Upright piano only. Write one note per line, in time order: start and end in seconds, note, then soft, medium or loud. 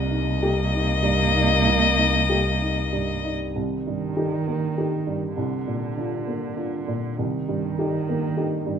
0.00 1.61 C2 medium
0.11 0.60 D#4 soft
0.43 0.92 G4 medium
0.73 1.23 D#4 soft
1.03 1.53 G2 medium
1.34 1.66 D#4 soft
1.66 3.51 C2 soft
1.98 2.48 D#4 soft
2.29 2.80 G4 soft
2.62 3.12 D#4 soft
2.93 3.43 G2 soft
3.24 3.55 D#4 soft
3.56 5.33 C2 soft
3.87 4.35 G2 soft
4.16 4.43 D#4 soft
4.16 4.44 G4 soft
4.47 4.95 A#3 soft
4.78 5.04 D#4 soft
4.78 5.04 G4 soft
5.07 5.37 G2 soft
5.37 7.13 C2 soft
5.67 6.15 A#2 soft
5.97 6.24 D4 soft
5.97 6.24 F4 soft
6.27 6.75 A#3 soft
6.56 6.83 D4 soft
6.56 6.84 F4 soft
6.88 7.17 A#2 soft
7.18 8.79 C2 soft
7.49 7.95 G2 soft
7.79 8.04 D#4 soft
7.79 8.04 G4 soft
8.09 8.55 A#3 soft
8.37 8.63 D#4 soft
8.37 8.63 G4 soft
8.66 8.79 G2 soft